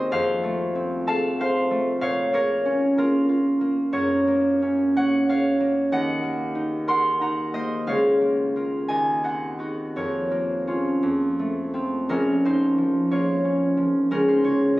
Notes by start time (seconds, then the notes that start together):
Already playing: D#2 C4 D#4 F#4 C5 D#5 F#5
0.12 F2 C5 F5
0.43 A3
0.75 C4
1.07 A4 F5 A5
1.40 F4 C5 F5
1.71 A3
2.01 A#2 C#5 F5
2.33 A#3 A#4 C#5
2.65 C#4
2.98 A#3 F4 A#4
3.29 F4
3.61 A#3
3.93 F#2 A#4 C#5
4.27 A#3
4.62 C#4
4.96 A#3 C#5 F#5
5.29 F#4 C#5 F5
5.60 A#3
5.92 D#2 D#5 F#5
6.23 A#3
6.55 D#4
6.88 A#4 F#5 C6
7.21 D#4 F#5 A#5
7.54 A#3 C5 D#5
7.87 C#2 C#5 F5
8.21 A#3
8.56 F4 A#4
8.88 D#2 D#5 G#5
9.23 C4 D#5 F#5
9.59 D#4 F#4
9.96 F2 A#4 C#5
10.31 A#3
10.67 C#4 F4
11.03 F2
11.39 A3
11.74 C4 F4
12.09 A#1 C#4 A#4
12.45 F2 D#4 C5
12.78 F3
13.11 A#3 F4 C#5
13.44 C#4
13.77 F3
14.11 C#2 C#4 A#4
14.28 D#4 C5
14.44 C#3 F4 C#5